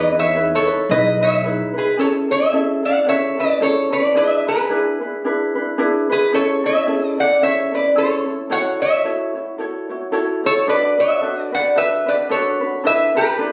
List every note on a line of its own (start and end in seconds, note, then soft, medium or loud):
0.00 0.51 E2 loud
0.00 0.12 D#4 medium
0.00 0.11 E4 medium
0.00 0.12 G#4 medium
0.00 0.10 B4 medium
0.00 0.17 B4 medium
0.00 0.19 D#5 medium
0.12 0.34 D#4 soft
0.12 0.35 E4 soft
0.12 0.35 B4 medium
0.19 0.52 C#5 medium
0.19 0.55 E5 loud
0.35 0.66 D#4 medium
0.35 0.66 E4 medium
0.35 0.66 G#4 medium
0.35 0.65 B4 medium
0.55 0.88 A4 medium
0.55 0.88 C#5 medium
0.66 0.89 D#4 soft
0.66 0.90 E4 soft
0.66 0.90 B4 soft
0.89 1.60 B1 medium
0.89 1.21 D#4 medium
0.89 1.20 E4 medium
0.89 1.21 G#4 medium
0.89 1.19 B4 medium
0.89 1.22 D#5 medium
1.20 1.43 D#4 soft
1.20 1.44 E4 medium
1.20 1.44 B4 medium
1.20 1.73 C#5 medium
1.20 1.72 E5 medium
1.44 1.75 D#4 medium
1.44 1.74 E4 medium
1.44 1.75 G#4 medium
1.44 1.72 B4 medium
1.74 1.98 D#4 soft
1.74 1.97 E4 soft
1.74 1.98 B4 medium
1.78 1.98 G#4 medium
1.78 2.00 B4 medium
1.97 2.29 C#4 medium
1.97 2.29 E4 medium
1.97 2.29 G#4 medium
1.97 2.27 A4 medium
1.97 2.08 A4 medium
1.97 2.09 C#5 medium
2.29 2.52 C#4 soft
2.29 2.52 E4 soft
2.29 2.52 A4 medium
2.29 2.81 C#5 medium
2.29 2.85 E5 medium
2.52 2.84 C#4 medium
2.52 2.83 E4 medium
2.52 2.83 G#4 medium
2.52 2.82 A4 medium
2.83 3.06 C#4 soft
2.83 3.06 E4 soft
2.83 3.07 A4 soft
2.83 3.06 D5 medium
2.83 3.08 F#5 medium
3.06 3.38 C#4 medium
3.06 3.37 E4 medium
3.06 3.37 G#4 medium
3.06 3.36 A4 medium
3.06 3.36 C#5 medium
3.06 3.40 E5 medium
3.37 3.59 C#4 soft
3.37 3.60 E4 soft
3.37 3.60 A4 medium
3.37 3.60 B4 medium
3.37 3.62 D5 medium
3.60 3.91 C#4 medium
3.60 3.90 E4 medium
3.60 3.92 G#4 medium
3.60 3.89 A4 medium
3.60 3.90 A4 medium
3.60 3.93 C#5 medium
3.90 4.15 C#4 soft
3.90 4.15 E4 soft
3.90 4.14 A4 medium
3.90 4.14 B4 medium
3.90 4.16 D5 medium
4.15 4.46 D4 medium
4.15 4.46 E4 medium
4.15 4.46 G#4 medium
4.15 4.45 B4 medium
4.15 4.48 E5 medium
4.46 4.69 D4 soft
4.46 4.69 E4 soft
4.46 6.06 G#4 medium
4.46 4.70 B4 medium
4.46 6.11 B4 medium
4.69 5.01 D4 medium
4.69 5.00 E4 medium
4.69 5.00 G#4 medium
4.69 4.99 B4 medium
5.00 5.24 D4 soft
5.00 5.24 E4 soft
5.00 5.24 B4 soft
5.24 5.55 D4 medium
5.24 5.55 E4 medium
5.24 5.55 G#4 medium
5.24 5.54 B4 medium
5.55 5.77 D4 soft
5.55 5.78 E4 medium
5.55 5.78 B4 medium
5.78 6.09 D4 medium
5.78 6.09 E4 loud
5.78 6.09 G#4 medium
5.78 6.08 B4 medium
6.10 6.33 D4 soft
6.10 6.32 E4 soft
6.10 6.32 G#4 medium
6.10 6.33 B4 medium
6.10 6.35 B4 medium
6.32 6.64 C#4 medium
6.32 6.64 E4 medium
6.32 6.63 G#4 medium
6.32 6.62 A4 medium
6.32 6.65 C#5 medium
6.64 6.86 C#4 soft
6.64 6.86 E4 soft
6.64 6.87 A4 soft
6.64 7.15 C#5 medium
6.64 7.09 E5 medium
6.87 7.18 C#4 medium
6.87 7.18 E4 medium
6.87 7.18 G#4 medium
6.87 7.17 A4 medium
7.09 7.20 D5 medium
7.18 7.41 C#4 soft
7.18 7.42 E4 soft
7.18 7.41 A4 medium
7.18 7.41 D5 medium
7.18 7.43 F#5 medium
7.41 7.73 C#4 medium
7.41 7.72 E4 medium
7.41 7.72 G#4 medium
7.41 7.71 A4 medium
7.41 7.71 C#5 medium
7.41 7.71 E5 medium
7.72 7.95 C#4 soft
7.72 7.95 E4 soft
7.72 7.95 A4 medium
7.72 7.95 B4 medium
7.72 7.97 D5 medium
7.96 8.27 C#4 medium
7.96 8.26 E4 medium
7.96 8.27 G#4 medium
7.96 8.25 A4 medium
7.96 8.47 A4 medium
7.96 8.51 C#5 medium
8.26 8.51 C#4 soft
8.26 8.49 E4 soft
8.26 8.48 A4 medium
8.50 8.81 E4 medium
8.50 8.81 F#4 medium
8.50 8.81 A4 medium
8.50 8.80 C#5 medium
8.50 8.81 F#5 medium
8.81 9.04 E4 soft
8.81 9.04 F#4 soft
8.81 9.04 C#5 soft
8.81 10.40 C#5 medium
8.81 10.49 E5 medium
9.04 9.35 E4 medium
9.04 9.35 F#4 medium
9.04 9.35 A4 medium
9.04 9.34 C#5 medium
9.35 9.58 E4 soft
9.35 9.58 F#4 soft
9.35 9.58 C#5 soft
9.58 9.90 E4 medium
9.58 9.89 F#4 medium
9.58 9.89 A4 medium
9.58 9.88 C#5 medium
9.89 10.11 E4 soft
9.89 10.12 F#4 soft
9.89 10.12 C#5 medium
10.12 10.44 E4 medium
10.12 10.44 F#4 medium
10.12 10.43 A4 medium
10.12 10.43 C#5 medium
10.44 10.67 E4 soft
10.44 10.66 F#4 soft
10.44 10.67 A4 medium
10.44 10.67 C#5 soft
10.44 10.69 C#5 medium
10.67 10.98 D4 medium
10.67 10.98 F#4 medium
10.67 10.98 A4 medium
10.67 10.97 B4 medium
10.67 11.00 D5 medium
10.98 11.21 D4 soft
10.98 11.22 F#4 soft
10.98 11.21 B4 soft
10.98 11.50 C#5 medium
10.98 11.43 E5 medium
11.21 11.53 D4 medium
11.21 11.52 F#4 medium
11.21 11.52 A4 medium
11.21 11.51 B4 medium
11.43 11.54 D5 medium
11.52 11.75 D4 soft
11.52 11.75 F#4 soft
11.52 11.76 B4 soft
11.52 11.75 D5 medium
11.52 11.77 F#5 medium
11.75 12.07 D4 medium
11.75 12.06 F#4 medium
11.75 12.07 A4 medium
11.75 12.05 B4 medium
11.75 12.06 B4 medium
11.75 12.09 E5 medium
12.06 12.29 D4 soft
12.06 12.29 F#4 soft
12.06 12.29 B4 medium
12.06 12.15 B4 medium
12.06 12.15 D5 medium
12.29 12.61 D4 medium
12.29 12.61 F#4 medium
12.29 12.61 A4 medium
12.29 12.81 A4 medium
12.29 12.59 B4 medium
12.29 12.87 C#5 medium
12.60 12.83 D4 soft
12.60 12.84 F#4 soft
12.60 12.84 B4 medium
12.84 13.15 D4 medium
12.84 13.14 E4 medium
12.84 13.15 A4 medium
12.84 13.13 B4 medium
12.84 13.17 E5 medium
12.88 13.15 B4 medium
13.15 13.37 D4 soft
13.15 13.38 E4 soft
13.15 13.52 G4 medium
13.15 13.38 B4 soft
13.15 13.52 B4 medium
13.38 13.52 D4 medium
13.38 13.52 E4 medium
13.38 13.52 A4 medium
13.38 13.52 B4 medium